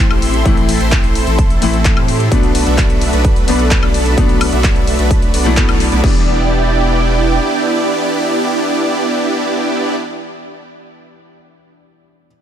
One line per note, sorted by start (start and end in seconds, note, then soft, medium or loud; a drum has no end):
0.00 0.44 A2 loud
0.00 0.45 E3 medium
0.00 0.46 A3 medium
0.00 0.46 C4 medium
0.00 0.47 E4 loud
0.00 6.00 A4 medium
0.00 2.28 E5 medium
0.00 2.28 C6 medium
0.11 0.43 A1 loud
0.11 0.43 C4 medium
0.11 0.43 E4 medium
0.11 0.43 G4 medium
0.11 high woodblock medium
0.22 open hi-hat medium
0.34 closed hi-hat soft
0.44 0.78 A1 loud
0.44 1.58 A2 loud
0.44 1.59 E3 medium
0.44 1.59 A3 medium
0.44 0.78 C4 medium
0.44 1.59 C4 medium
0.44 0.78 E4 medium
0.44 1.60 E4 loud
0.44 0.78 A4 loud
0.44 kick loud
0.44 closed hi-hat medium
0.57 closed hi-hat soft
0.69 open hi-hat loud
0.80 1.25 A1 loud
0.80 1.24 C4 loud
0.80 1.24 E4 medium
0.80 1.24 C5 loud
0.80 closed hi-hat medium
0.92 kick loud
0.92 clap loud
0.92 closed hi-hat medium
1.04 closed hi-hat soft
1.15 open hi-hat loud
1.27 1.59 A1 loud
1.27 1.59 C4 medium
1.27 1.59 E4 medium
1.27 1.59 A4 medium
1.27 closed hi-hat medium
1.39 kick loud
1.39 closed hi-hat medium
1.50 closed hi-hat soft
1.61 1.94 A1 loud
1.61 2.28 A2 medium
1.61 2.29 E3 medium
1.61 2.29 A3 medium
1.61 1.94 C4 medium
1.61 2.29 C4 medium
1.61 1.94 E4 medium
1.61 2.29 E4 loud
1.61 1.94 A4 medium
1.61 open hi-hat loud
1.74 closed hi-hat medium
1.85 kick loud
1.85 clap loud
1.85 closed hi-hat medium
1.97 2.29 A2 loud
1.97 2.29 C4 medium
1.97 2.29 E4 medium
1.97 2.29 G4 medium
1.97 high woodblock medium
2.08 open hi-hat medium
2.20 closed hi-hat medium
2.31 2.64 B1 loud
2.31 3.45 B2 medium
2.31 3.45 F#3 medium
2.31 2.64 A3 loud
2.31 3.45 A3 medium
2.31 2.64 B3 medium
2.31 3.45 B3 medium
2.31 2.64 D4 medium
2.31 3.46 D4 loud
2.31 2.64 F#4 medium
2.31 2.64 B4 loud
2.31 6.00 D5 medium
2.31 6.00 B5 loud
2.31 kick loud
2.31 closed hi-hat medium
2.43 closed hi-hat soft
2.55 open hi-hat loud
2.66 3.11 B1 loud
2.66 3.10 A3 loud
2.66 3.10 B3 medium
2.66 3.10 D4 medium
2.66 3.10 F#4 medium
2.66 3.10 E5 loud
2.66 closed hi-hat medium
2.78 kick loud
2.78 clap loud
2.78 closed hi-hat medium
2.90 closed hi-hat soft
3.01 open hi-hat loud
3.13 3.46 B1 loud
3.13 3.45 A3 medium
3.13 3.45 B3 medium
3.13 3.45 D4 medium
3.13 3.45 F#4 medium
3.13 3.45 B4 medium
3.13 closed hi-hat medium
3.25 kick loud
3.25 closed hi-hat medium
3.36 closed hi-hat soft
3.47 3.80 B1 loud
3.47 4.14 B2 medium
3.47 4.15 F#3 medium
3.47 3.80 A3 medium
3.47 4.15 A3 medium
3.47 3.80 B3 medium
3.47 4.15 B3 medium
3.47 3.80 D4 medium
3.47 4.16 D4 loud
3.47 3.80 F#4 medium
3.47 3.80 B4 medium
3.47 open hi-hat loud
3.59 closed hi-hat medium
3.71 kick loud
3.71 clap loud
3.71 closed hi-hat medium
3.83 4.15 B1 loud
3.83 4.15 A3 medium
3.83 4.15 B3 medium
3.83 4.15 D4 medium
3.83 4.15 F#4 medium
3.83 4.15 A4 medium
3.83 high woodblock medium
3.94 open hi-hat medium
4.06 closed hi-hat medium
4.16 4.50 B1 loud
4.16 5.31 B2 loud
4.16 5.31 F#3 medium
4.16 5.31 A3 medium
4.16 4.50 A3 medium
4.16 5.31 B3 medium
4.16 4.50 D4 medium
4.16 5.32 D4 loud
4.16 kick loud
4.16 closed hi-hat medium
4.29 closed hi-hat soft
4.41 open hi-hat loud
4.41 high woodblock medium
4.52 4.97 B1 loud
4.52 4.96 A3 loud
4.52 4.96 B3 medium
4.52 4.96 D4 medium
4.52 4.96 F#4 medium
4.52 4.96 E5 loud
4.52 closed hi-hat medium
4.64 kick loud
4.64 clap loud
4.64 closed hi-hat medium
4.76 closed hi-hat soft
4.87 open hi-hat medium
4.99 5.32 B1 loud
4.99 5.31 A3 medium
4.99 5.31 B3 medium
4.99 5.31 D4 medium
4.99 5.31 F#4 medium
4.99 5.31 B4 medium
4.99 closed hi-hat medium
5.11 kick loud
5.11 closed hi-hat medium
5.22 closed hi-hat soft
5.34 5.66 B1 loud
5.34 5.66 A3 medium
5.34 5.66 B3 medium
5.34 5.66 D4 medium
5.34 5.66 F#4 medium
5.34 5.66 D5 loud
5.34 open hi-hat loud
5.45 5.54 B2 loud
5.45 5.54 F#3 medium
5.45 5.54 A3 medium
5.45 5.55 B3 medium
5.45 5.55 E4 loud
5.45 closed hi-hat medium
5.57 6.01 B2 medium
5.57 6.01 F#3 medium
5.57 6.01 A3 medium
5.57 6.01 B3 medium
5.57 6.01 E4 loud
5.57 kick loud
5.57 clap loud
5.57 closed hi-hat medium
5.69 5.90 B1 loud
5.69 5.81 A3 medium
5.69 5.81 B3 medium
5.69 5.81 D4 medium
5.69 5.81 F#4 medium
5.69 5.81 D5 loud
5.69 closed hi-hat soft
5.69 high woodblock medium
5.80 open hi-hat medium
5.92 6.01 B1 loud
5.92 6.01 A3 medium
5.92 6.01 B3 medium
5.92 6.01 D4 medium
5.92 6.01 F#4 medium
5.92 6.01 D5 medium
5.92 closed hi-hat medium
6.02 7.39 E1 loud
6.02 9.93 E3 medium
6.02 9.94 G3 medium
6.02 9.95 B3 medium
6.02 9.96 D4 loud
6.02 9.95 E4 medium
6.02 9.95 G4 medium
6.02 9.95 D5 medium
6.02 9.95 G5 medium
6.02 kick loud
6.02 crash medium